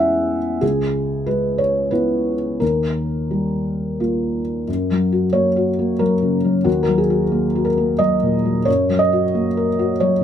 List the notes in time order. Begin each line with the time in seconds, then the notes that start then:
Already playing: E2 G#3 C#4 E4 E5 F#5 G#5
0.61 C#2 G#4
1.26 G#3 B4
1.58 C#5
1.91 B3 E4 B4
2.60 D#2 A#4
3.31 G3
4.00 A#3 F4
4.68 F#2
4.91 F#3
5.12 F#4
5.33 A#3 C#5
5.56 F#4
5.79 A#3
5.99 F#3 A#4
6.22 C#3
6.45 F#3
6.64 D#2 F#4
6.83 A#4
6.88 F#3
6.98 G#4
7.10 F#4
7.32 A#3
7.55 F#4
7.65 A#4
7.78 A#3
7.99 F#3 D#5
8.23 A#2
8.45 F#3
8.65 F#2 C#5
8.89 F#3
8.99 D#5
9.13 F#4
9.35 A#3
9.57 A#4
9.79 F#4
10.00 F#3 C#5